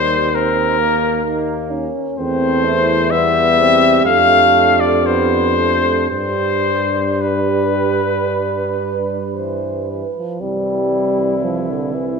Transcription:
Already playing: tuba D#2, trombone G3, euphonium D#4, french horn section A#4, cornet C5
0.33 trombone C4, cornet A#4
0.79 trombone A#3
1.24 trombone A#3, euphonium D#4
1.72 euphonium C#4
2.18 tuba E2, trombone A3, euphonium C4, french horn section C5, cornet C5
2.65 euphonium E4
3.11 trombone G3, euphonium B3, french horn section G4, cornet E5
3.59 euphonium C4
4.05 tuba F2, trombone A3, euphonium D4, cornet F5
4.80 cornet D5
5.05 trombone B3, cornet C5
5.58 trombone A3
6.10 tuba G2, trombone G3, euphonium D4, french horn section G4, cornet C5
7.21 french horn section G4, cornet B4
8.27 french horn section B4
9.34 euphonium E3, french horn section C5
9.89 french horn section B4
10.17 euphonium F3
10.40 tuba C2, trombone E3, euphonium G3, french horn section C4, cornet E4
11.44 euphonium F3
11.70 euphonium D3
11.95 euphonium E3

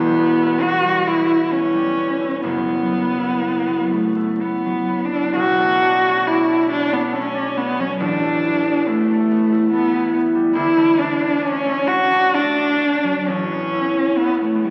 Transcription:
Already playing: harp E1 E2 G3 B3 E4, cello B3
0.17 harp B3
0.40 harp E4
0.62 harp B3, cello F#4
0.84 harp G3
1.06 harp B3, cello E4
1.28 harp E4
1.51 harp B3, cello C#4
1.74 harp G3
1.97 harp B3
2.21 harp E4
2.43 harp F#1 F#2, cello B3
2.68 harp F#3
2.93 harp B3
3.19 harp E4
3.43 harp B3
3.67 harp F#3
3.93 cello A3, harp B3
4.17 harp E4
4.41 harp B3, cello B3
4.65 harp F#3
4.89 harp B3
5.05 cello D4
5.13 harp E4
5.36 harp B1, cello F#4
5.58 harp A3
5.82 harp D4
6.04 harp C#4
6.26 harp D4, cello E4
6.48 harp A3
6.70 harp C#4, cello D4
6.91 cello B3, harp D4
7.13 harp A3, cello C#4
7.34 harp D4
7.57 cello B3, harp C#4
7.79 harp F#3, cello C#4
8.00 harp A1, cello D4
8.23 harp A3
8.45 harp E4
8.67 harp B3
8.88 cello A3, harp E4
9.11 harp A3
9.31 harp B3
9.52 harp E4
9.72 harp A3, cello B3
9.94 harp E4
10.14 harp B3
10.35 harp G3
10.54 harp D2, cello E4
10.77 harp A3
10.98 harp D4, cello D4
11.20 harp C#4
11.41 cello C#4, harp D4
11.66 harp A3
11.87 harp C#4, cello F#4
12.11 harp D4
12.34 harp A3, cello D4
12.58 harp D4
12.81 harp C#4
13.04 harp F#3
13.27 harp A1, cello C#4
13.51 harp B3
13.74 harp E4
13.96 harp C#4
14.18 cello B3, harp E4
14.42 cello A3, harp B3
14.64 cello G3, harp C#4

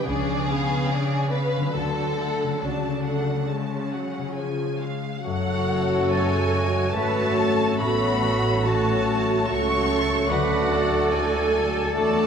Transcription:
Already playing: harp C#3 F3 D4
0.02 violin section G#4, harp B4
0.07 double bass section C#2, cello section C#3, viola section C#4 D4, violin section D5
0.49 viola section B3 C#4, violin section F5
0.91 viola section C#4 D4, violin section D5
1.31 viola section B3 C#4, violin section B4 F5
1.57 harp D3
1.61 harp F#3
1.66 harp F#4
1.70 cello section D3, harp A4
1.74 double bass section D2, viola section F#3 F#4, violin section A4 A5
2.18 viola section A3 A4, violin section F#5
2.43 harp C#3
2.48 harp F#3
2.52 harp F#4
2.56 cello section C#3, harp A4
2.62 double bass section C#2, viola section F#3 F#4, violin section D4 A5
3.06 viola section A3 A4, violin section F#5
3.50 viola section G#3, violin section C#4 A5
3.93 viola section F#3, violin section F#5
4.18 harp C#3
4.23 harp G#3
4.28 harp F4
4.32 harp G#4
4.38 viola section F3, violin section G#5
4.81 viola section G#3, violin section F5
5.24 double bass section F#1, harp F#2, french horn section F#3, viola section F#3 F#4, bassoon A3, clarinet F#4, violin section A4 C#5 F#5, cor anglais C#5
5.70 harp C#4
6.12 french horn section G#3, harp B3, cello section A4, violin section G#5
6.53 harp C#4, cello section F#4
6.95 double bass section G#1, viola section F#3 F#4, french horn section A3, harp A3, bassoon A3, clarinet F#4, violin section A4 C#5 A5, cello section B4, cor anglais C#5
7.38 harp C#4, cello section A4
7.80 double bass section A1, harp A2, viola section F#3 F#4, bassoon A3, french horn section B3, clarinet F#4, cello section F#4, violin section A4 C#5 B5, cor anglais C#5
8.24 harp C#4
8.65 viola section F#3 F#4, bassoon A3, french horn section A3, harp B3, clarinet F#4, violin section A4 C#5 A5, cor anglais C#5
9.06 harp C#4
9.46 double bass section C#2, viola section F#3 F#4, harp A3, bassoon A3, french horn section C#4, cello section F#4, clarinet F#4, violin section A4 C#6, cor anglais C#5
9.51 violin section C#5
9.88 harp C#4, cello section A4
10.29 double bass section D2, harp D3, french horn section F#3, viola section F#3 F#4, bassoon A3, clarinet F#4, violin section A4 D5 F#5, cello section B4, cor anglais D5
10.70 harp F#4, cello section A4
11.12 french horn section G#3, harp E4, violin section G#5
11.54 harp F#4
11.93 double bass section E2, viola section F#3 F#4, french horn section A3, bassoon A3, harp D4, clarinet F#4, violin section A4 D5 A5, cor anglais D5

